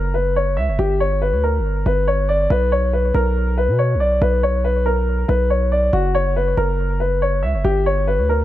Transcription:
Already playing: 808-style bass F#1, grand piano A#4
0.14 grand piano B4
0.36 grand piano C#5
0.57 808-style bass C#2, grand piano E5
0.68 808-style bass F#1
0.79 808-style bass G1, grand piano G4
1.00 grand piano C#5
1.22 grand piano B4
1.32 808-style bass D2
1.44 grand piano A#4
1.59 808-style bass G1
1.86 808-style bass G1, grand piano B4
2.08 grand piano C#5
2.29 grand piano D5
2.50 808-style bass B1, grand piano B4
2.72 grand piano C#5
2.93 grand piano B4
3.14 808-style bass B1, grand piano A#4
3.58 grand piano B4
3.68 808-style bass B2
3.79 grand piano C#5
3.95 808-style bass B1
4.00 grand piano D5
4.22 808-style bass B1, grand piano B4
4.43 grand piano C#5
4.64 grand piano B4
4.86 grand piano A#4
5.28 808-style bass B1, grand piano B4
5.50 grand piano C#5
5.72 grand piano D5
5.93 808-style bass F#1, grand piano F#4
6.15 grand piano C#5
6.36 grand piano B4
6.57 808-style bass F#1, grand piano A#4
7.00 grand piano B4
7.22 grand piano C#5
7.43 808-style bass C#2, grand piano E5
7.54 808-style bass F#1
7.64 808-style bass G1, grand piano G4
7.86 grand piano C#5
8.07 grand piano B4
8.18 808-style bass D2
8.29 grand piano A#4

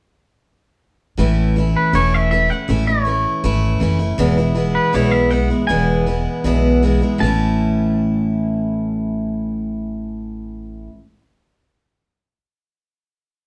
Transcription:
1.17 upright bass A1, steel-string acoustic guitar A2 E3 A3 C#4 E4
1.56 steel-string acoustic guitar E3 A3 C#4 E4
1.76 clean electric guitar B4
1.93 upright bass E1, steel-string acoustic guitar A2 E3 A3 C#4 E4, clean electric guitar C#5
2.14 clean electric guitar E5
2.31 steel-string acoustic guitar E3 A3 C#4 E4, clean electric guitar E5
2.49 steel-string acoustic guitar A3 C#4 E4, clean electric guitar F#5
2.68 upright bass A1, steel-string acoustic guitar A2 E3 A3 C#4 E4, clean electric guitar E5
2.86 steel-string acoustic guitar A3 C#4 E4, clean electric guitar C#5
3.05 steel-string acoustic guitar E3 A3 C#4 E4
3.44 upright bass G#1, steel-string acoustic guitar E3 A3 C#4 E4
3.80 upright bass F#1, steel-string acoustic guitar E3 A3 C#4 E4
3.99 steel-string acoustic guitar A3 C#4 E4
4.18 upright bass E1, steel-string acoustic guitar E2 B2 E3 G#3 B3 E4
4.37 steel-string acoustic guitar E3 G#3 B3 E4
4.55 steel-string acoustic guitar E3 G#3 B3 E4
4.75 clean electric guitar B4
4.93 upright bass B1, steel-string acoustic guitar E2 B2 E3 G#3 B3 E4, clean electric guitar C#5
5.11 clean electric guitar E5
5.30 steel-string acoustic guitar E3 G#3 B3 E4, clean electric guitar F#5
5.50 steel-string acoustic guitar E3 G#3 B3 E4
5.67 upright bass E1, steel-string acoustic guitar E2 B2 E3 G#3 B3 E4, clean electric guitar G#5
6.06 steel-string acoustic guitar E3 G#3 B3 E4
6.44 upright bass B1, steel-string acoustic guitar E2 B2 E3 G#3 B3 E4
6.83 steel-string acoustic guitar E3 G#3 B3 E4
7.01 steel-string acoustic guitar E3 G#3 B3 E4
7.18 upright bass A1, steel-string acoustic guitar A2 E3, clean electric guitar A5
7.23 steel-string acoustic guitar A3 C#4 E4

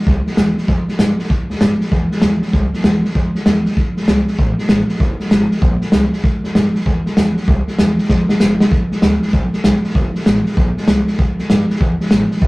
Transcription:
0.02 snare
0.07 upright bass C2, kick, snare
0.26 muted upright bass stroke, snare
0.32 snare
0.37 upright bass E2, snare, hi-hat pedal
0.57 muted upright bass stroke, snare
0.63 snare
0.68 upright bass F2, kick, snare
0.88 muted upright bass stroke, snare
0.99 upright bass G2, snare, hi-hat pedal
1.19 muted upright bass stroke, snare
1.25 snare
1.30 upright bass C2, kick, snare
1.50 upright bass E2, snare
1.55 snare
1.61 upright bass G2, snare, hi-hat pedal
1.80 muted upright bass stroke, snare
1.86 snare
1.92 upright bass E2, kick, snare
2.12 muted upright bass stroke, snare
2.17 snare
2.22 upright bass E2, snare, hi-hat pedal
2.42 muted upright bass stroke, snare
2.47 snare
2.53 upright bass C2, kick, snare
2.74 muted upright bass stroke, snare
2.79 snare
2.84 upright bass E2, snare, hi-hat pedal
3.04 muted upright bass stroke, snare
3.10 snare
3.15 upright bass F2, kick, snare
3.35 muted upright bass stroke, snare
3.46 upright bass E2, snare, hi-hat pedal
3.65 muted upright bass stroke, snare
3.71 snare
3.77 upright bass F1, kick, snare
3.97 upright bass A1, snare
4.03 snare
4.08 upright bass C2, snare, hi-hat pedal
4.28 snare
4.33 snare
4.38 upright bass A1, kick, snare
4.58 snare
4.64 snare
4.69 upright bass A1, snare, hi-hat pedal
4.89 muted upright bass stroke, snare
4.95 snare
5.00 upright bass F1, kick, snare
5.20 muted upright bass stroke, snare
5.26 snare
5.31 upright bass G#1, snare, hi-hat pedal
5.51 snare
5.57 snare
5.62 upright bass A#1, kick, snare
5.81 muted upright bass stroke, snare
5.92 upright bass C2, snare, hi-hat pedal
6.13 muted upright bass stroke, snare
6.18 snare
6.24 upright bass C2, kick, snare
6.44 upright bass E2, snare
6.55 upright bass G2, snare, hi-hat pedal
6.75 muted upright bass stroke, snare
6.80 snare
6.86 upright bass E2, kick, snare
7.06 muted upright bass stroke, snare
7.17 upright bass E2, snare, hi-hat pedal
7.37 muted upright bass stroke, snare
7.43 snare
7.48 upright bass C2, kick, snare
7.68 muted upright bass stroke, snare
7.79 upright bass E2, snare, hi-hat pedal
7.98 muted upright bass stroke, snare
8.04 snare
8.09 upright bass F2, kick, snare
8.29 muted upright bass stroke, snare
8.40 upright bass F1, snare, hi-hat pedal
8.60 muted upright bass stroke, snare
8.71 upright bass G1, kick, snare
8.92 upright bass B1, snare
9.02 upright bass D2, snare, hi-hat pedal
9.22 muted upright bass stroke, snare
9.28 snare
9.33 upright bass B1, kick, snare
9.53 muted upright bass stroke, snare
9.64 upright bass B1, snare, hi-hat pedal
9.84 muted upright bass stroke, snare
9.90 snare
9.95 upright bass F1, kick, snare
10.15 snare
10.21 snare
10.26 upright bass A1, snare, hi-hat pedal
10.46 muted upright bass stroke, snare
10.52 snare
10.57 upright bass A#1, kick, snare
10.77 muted upright bass stroke, snare
10.82 snare
10.88 upright bass C2, snare, hi-hat pedal
11.07 muted upright bass stroke, snare
11.14 snare
11.19 upright bass C2, kick, snare
11.39 upright bass E2, snare
11.50 upright bass G2, snare, hi-hat pedal
11.70 muted upright bass stroke, snare
11.76 snare
11.81 upright bass E2, kick, snare
12.00 muted upright bass stroke, snare
12.06 snare
12.11 upright bass A1, snare, hi-hat pedal
12.31 muted upright bass stroke, snare
12.37 snare
12.42 upright bass G1, kick, snare

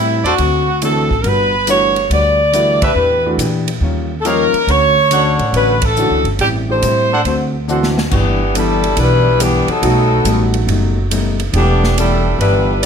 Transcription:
Already playing: upright bass A2, hollow-body jazz guitar A2 G3 C4, saxophone section E4
0.00 hollow-body jazz guitar E4
0.23 upright bass E2, trumpet section D4 A4 C5 D5, saxophone section F#4, ride
0.38 upright bass D2, hollow-body jazz guitar D3 A3 C4 F#4, ride
0.82 hollow-body jazz guitar D3 A3 C4 F#4, grand piano E3 A3 D4 F#4, saxophone section A4, hi-hat pedal, ride
1.10 upright bass A1, kick
1.21 upright bass G1, hollow-body jazz guitar G3, saxophone section A#4, ride
1.26 hollow-body jazz guitar D4 F#4 B4, saxophone section B4
1.67 grand piano E3 A3 D4 F#4, hollow-body jazz guitar G3 D4 F#4 B4, saxophone section C#5, hi-hat pedal, ride
1.96 ride
2.10 upright bass D2, hollow-body jazz guitar G3 D4 F#4 B4, saxophone section D5, ride
2.52 grand piano E3 A3 D4 E4, hollow-body jazz guitar G3 D4 F#4 B4, hi-hat pedal, ride
2.81 trumpet section D4 G4 B4 E5, saxophone section B4, kick, ride
2.95 upright bass E2, hollow-body jazz guitar E3 D4 G4 B4
3.26 grand piano E3 A3 D4 F#4
3.38 upright bass A#2, hollow-body jazz guitar E3 D4 G4 B4, hi-hat pedal, ride
3.68 ride
3.80 upright bass D#2, hollow-body jazz guitar D#3 G3 C#4 F4
4.21 hollow-body jazz guitar D#3, grand piano F3, trumpet section D#4 G4 C#5 F5, saxophone section A4, hi-hat pedal, ride
4.25 hollow-body jazz guitar G3 C#4 F4, grand piano A#3 D#4 A#4, saxophone section A#4
4.53 muted upright bass stroke, ride
4.67 upright bass D2, hollow-body jazz guitar D3 A3 C#4 F#4, saxophone section C#5, ride
5.11 hollow-body jazz guitar D3 A3 C#4 F#4, trumpet section D4 A4 C#5 F#5, hi-hat pedal, ride
5.39 upright bass A2, ride
5.53 upright bass A1, hollow-body jazz guitar D3 A3 C#4, saxophone section B4, ride
5.57 hollow-body jazz guitar F#4
5.82 saxophone section A4, kick, ride
5.96 hollow-body jazz guitar D3 A3 C#4 F#4, grand piano E3 A3 D4 F#4, hi-hat pedal
6.10 upright bass C#2
6.24 upright bass G1, ride
6.39 upright bass A1, hollow-body jazz guitar A2 G3 C4, saxophone section G4, ride
6.43 hollow-body jazz guitar E4
6.69 grand piano E3 A3 D4 G4, saxophone section C5
6.82 upright bass A2, hollow-body jazz guitar A2 G3 C4 E4, hi-hat pedal, ride
7.11 trumpet section D4 A4 C5 F#5
7.24 upright bass D2, hollow-body jazz guitar D3 A3 C4 F#4, ride
7.68 hollow-body jazz guitar D3 A3 C4 F#4, grand piano E3 A3 D4 F#4, trumpet section D4 A4 C5 F#5, hi-hat pedal
7.83 snare
7.98 snare
8.10 upright bass G1, hollow-body jazz guitar G2 E3, saxophone section E3 B3 D4 F#4 G4, kick, crash
8.14 hollow-body jazz guitar B3 D4
8.54 hollow-body jazz guitar G2 E3 B3 D4, saxophone section G3 D4 E4 A4, hi-hat pedal, ride
8.84 ride
8.97 upright bass B1, hollow-body jazz guitar G2 E3 B3 D4, saxophone section G3 D4 E4 B4, ride
9.39 hollow-body jazz guitar G2 E3 B3 D4, saxophone section E3 B3 D4 G4, hi-hat pedal, ride
9.68 saxophone section F#3 B3 D#4 A4, muted upright bass stroke, ride
9.82 upright bass B1, hollow-body jazz guitar B2 G3 A3 D#4, grand piano F#3 A3 D#4 F#4, ride
10.24 upright bass A1, hollow-body jazz guitar B2 G3 A3 D#4, hi-hat pedal, ride
10.54 ride
10.67 upright bass F#1, hollow-body jazz guitar B2 G3 A3, ride
10.71 hollow-body jazz guitar D#4
11.10 hollow-body jazz guitar B2 G3 A3 D#4, hi-hat pedal, ride
11.40 ride
11.52 upright bass E1, hollow-body jazz guitar E3 B3 D4 G4, grand piano E3 A3 D4 G4, saxophone section B3 D4, ride
11.56 saxophone section E3 G4
11.84 snare
11.97 hollow-body jazz guitar E3 B3 D4 G4, saxophone section G3 D4 E4 A4, hi-hat pedal, ride
12.39 upright bass G1, hollow-body jazz guitar E3 B3 D4, saxophone section G3 D4 E4 B4, ride
12.43 hollow-body jazz guitar G4

